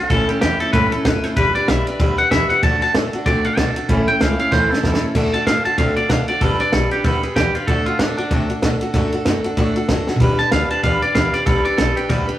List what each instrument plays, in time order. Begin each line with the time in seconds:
Already playing: steel-string acoustic guitar F#4
0.00 steel-string acoustic guitar D4
0.10 upright bass A1, steel-string acoustic guitar A2 E3 A3 C#4 E4 A4, clean electric guitar A4, kick, ride
0.29 steel-string acoustic guitar A3 C#4 E4 A4, clean electric guitar G4, muted upright bass stroke, ride
0.41 upright bass E2, steel-string acoustic guitar A3 C#4 E4 A4, clean electric guitar G4, snare, ride
0.60 steel-string acoustic guitar A3 C#4 E4 A4, clean electric guitar A4, muted upright bass stroke, ride
0.73 upright bass G2, steel-string acoustic guitar A2 E3 A3 C#4 E4 A4, clean electric guitar B4, kick, snare, ride
0.92 steel-string acoustic guitar A3 C#4 E4 A4, clean electric guitar A4, muted upright bass stroke, ride
1.05 upright bass F#1, steel-string acoustic guitar A3 C#4 E4 A4, clean electric guitar B4, kick, snare, ride
1.23 steel-string acoustic guitar A3 C#4 E4 A4, clean electric guitar C5, muted upright bass stroke, snare, ride
1.36 upright bass G1, steel-string acoustic guitar G3 D4 G4 B4, clean electric guitar B4, kick, ride
1.55 steel-string acoustic guitar D4 G4 B4, clean electric guitar D5, muted upright bass stroke, ride
1.68 upright bass B1, steel-string acoustic guitar G3 D4 G4 B4, clean electric guitar E5, snare, ride
1.87 steel-string acoustic guitar D4 G4 B4, clean electric guitar D5, ride
2.00 upright bass D2, steel-string acoustic guitar G3 D4 G4 B4, clean electric guitar E5, kick, snare, ride
2.17 steel-string acoustic guitar D4 G4 B4, clean electric guitar F#5, muted upright bass stroke, ride
2.31 upright bass E2, steel-string acoustic guitar G3 D4 G4 B4, clean electric guitar E5, kick, snare, ride
2.50 steel-string acoustic guitar D4 G4 B4, clean electric guitar F#5, muted upright bass stroke, ride
2.63 upright bass D2, steel-string acoustic guitar D3 A3 D4 F#4 A4, clean electric guitar A5, kick, ride
2.81 steel-string acoustic guitar D4 F#4 A4, clean electric guitar A5, muted upright bass stroke, snare, ride
2.94 upright bass A2, steel-string acoustic guitar A3 D4 F#4 A4, snare, ride
3.13 steel-string acoustic guitar D4 F#4 A4, muted upright bass stroke, ride
3.26 upright bass C3, steel-string acoustic guitar D3 A3 D4 F#4 A4, clean electric guitar D5, kick, snare, ride
3.44 steel-string acoustic guitar D4 F#4 A4, clean electric guitar F5, muted upright bass stroke, ride
3.57 upright bass B2, steel-string acoustic guitar A3 D4 F#4 A4, clean electric guitar A5, kick, snare, ride
3.76 steel-string acoustic guitar D4 F#4 A4, muted upright bass stroke, ride
3.89 upright bass A1, steel-string acoustic guitar A2 E3 A3 C#4 E4 A4, kick, ride
4.07 steel-string acoustic guitar A3 C#4 E4 A4, clean electric guitar G5, muted upright bass stroke, ride
4.20 upright bass C#2, steel-string acoustic guitar A3 C#4 E4 A4, clean electric guitar F5, snare, ride
4.38 steel-string acoustic guitar A3 C#4 E4 A4, clean electric guitar F5, muted upright bass stroke, ride
4.51 upright bass E2, steel-string acoustic guitar A2 E3 A3 C#4 E4 A4, clean electric guitar C5, kick, snare
4.70 steel-string acoustic guitar A3 C#4 E4 A4, clean electric guitar A4, muted upright bass stroke, snare
4.83 upright bass E2, steel-string acoustic guitar A3 C#4 E4 A4, kick, snare
4.94 snare
5.02 steel-string acoustic guitar A3 C#4 E4 A4, muted upright bass stroke
5.15 upright bass D2, steel-string acoustic guitar D3 A3 D4 F#4 A4, kick, snare, crash
5.33 steel-string acoustic guitar D4 F#4 A4, clean electric guitar A5, muted upright bass stroke, ride
5.46 upright bass A2, steel-string acoustic guitar A3 F#4 A4, clean electric guitar F5, snare, ride
5.65 steel-string acoustic guitar D4 F#4 A4, clean electric guitar A5, muted upright bass stroke, ride
5.78 upright bass C3, steel-string acoustic guitar D3 A3 D4 F#4 A4, clean electric guitar F5, kick, ride
5.96 steel-string acoustic guitar D4 F#4 A4, clean electric guitar D5, muted upright bass stroke, ride
6.09 upright bass B2, steel-string acoustic guitar A3 D4 F#4 A4, clean electric guitar F5, kick, snare, ride
6.28 steel-string acoustic guitar D4 F#4 A4, clean electric guitar D5, muted upright bass stroke, ride
6.41 upright bass G1, steel-string acoustic guitar G3 D4 G4 B4, clean electric guitar A4, kick, ride
6.60 steel-string acoustic guitar D4 G4 B4, clean electric guitar D5, muted upright bass stroke, snare, ride
6.73 upright bass B1, steel-string acoustic guitar G3 D4 G4 B4, clean electric guitar A4, snare, ride
6.91 steel-string acoustic guitar D4 G4 B4, clean electric guitar G4, muted upright bass stroke, ride
7.04 upright bass D2, steel-string acoustic guitar G3 D4 G4 B4, clean electric guitar A4, kick, snare, ride
7.23 steel-string acoustic guitar D4 G4 B4, clean electric guitar G#4, muted upright bass stroke, ride
7.36 upright bass E2, steel-string acoustic guitar G3 D4 G4 B4, clean electric guitar G4, kick, snare, ride
7.55 steel-string acoustic guitar D4 G4 B4, clean electric guitar F4, muted upright bass stroke, ride
7.67 upright bass D2, steel-string acoustic guitar D3 A3 D4 F#4 A4, clean electric guitar A4, kick, ride
7.86 steel-string acoustic guitar D4 F#4 A4, clean electric guitar F4, muted upright bass stroke, ride
7.99 upright bass A2, steel-string acoustic guitar A3 D4 F#4 A4, clean electric guitar D4, snare, ride
8.17 clean electric guitar D4, steel-string acoustic guitar D4 F#4 A4, muted upright bass stroke, ride
8.31 upright bass C3, steel-string acoustic guitar D3 A3 D4 F#4 A4, kick, ride
8.49 steel-string acoustic guitar D4 F#4 A4, muted upright bass stroke, ride
8.62 upright bass B2, steel-string acoustic guitar A3 D4 F#4 A4, kick, snare, ride
8.81 steel-string acoustic guitar D4 F#4 A4, muted upright bass stroke, ride
8.94 upright bass F#2, steel-string acoustic guitar D3 A3 D4 F#4 A4, kick, snare, ride
9.12 steel-string acoustic guitar D4 F#4 A4, muted upright bass stroke, ride
9.25 upright bass F#2, steel-string acoustic guitar A3 D4 F#4 A4, snare, ride
9.44 steel-string acoustic guitar D4 F#4 A4, muted upright bass stroke, ride
9.57 upright bass A2, steel-string acoustic guitar D3 A3 D4 F#4 A4, kick, ride
9.76 steel-string acoustic guitar D4 F#4 A4, muted upright bass stroke, ride
9.89 upright bass F#1, steel-string acoustic guitar A3 D4 F#4 A4, kick, snare, ride
10.07 steel-string acoustic guitar D4 F#4 A4, muted upright bass stroke, snare
10.16 floor tom
10.20 upright bass G1, steel-string acoustic guitar G3 D4 G4 B4, kick, ride
10.39 steel-string acoustic guitar D4 G4 B4, clean electric guitar A5, muted upright bass stroke, snare, ride
10.52 upright bass D2, steel-string acoustic guitar G3 D4 G4 B4, clean electric guitar F5, snare, ride
10.70 steel-string acoustic guitar D4 G4 B4, clean electric guitar A5, muted upright bass stroke, ride
10.83 upright bass E2, steel-string acoustic guitar G3 D4 G4 B4, clean electric guitar F5, kick, ride
11.02 steel-string acoustic guitar D4 G4 B4, clean electric guitar D5, muted upright bass stroke, ride
11.15 upright bass E2, steel-string acoustic guitar G3 D4 G4 B4, clean electric guitar F5, kick, snare, ride
11.34 steel-string acoustic guitar D4 G4 B4, clean electric guitar D5, muted upright bass stroke, snare, ride
11.46 upright bass B1, steel-string acoustic guitar G3 D4 G4 B4, clean electric guitar A4, kick, ride
11.64 steel-string acoustic guitar D4 G4 B4, clean electric guitar D5, muted upright bass stroke, ride
11.78 upright bass B1, steel-string acoustic guitar G3 D4 G4 B4, clean electric guitar A4, snare, ride
11.96 steel-string acoustic guitar D4 G4 B4, clean electric guitar G4, ride
12.09 upright bass D2, steel-string acoustic guitar G3 D4 G4 B4, clean electric guitar A4, kick, snare, ride
12.27 steel-string acoustic guitar D4 G4 B4, clean electric guitar G4, muted upright bass stroke, ride